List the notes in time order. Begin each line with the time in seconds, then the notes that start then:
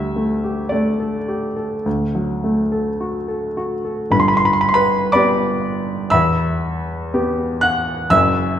Already playing: D2 G3 E5
0.16 A3
0.44 G4
0.69 A3 D5
1.00 A4
1.28 G4
1.56 A4
1.86 D2
2.15 F#3
2.44 A3
2.72 A4
3.01 F#4
3.28 A4
3.57 F#4
3.85 A4
4.10 G1 G2 B5
4.20 C6
4.28 B5
4.37 C6
4.45 B5
4.53 C6
4.61 B5
4.69 C6
4.74 B4 B5
5.12 B3 G4 D5 B5 D6
6.10 E2 E5 B5 E6
7.14 B3 G4
7.61 F#5 F#6
8.10 F#1 F#2 E5 E6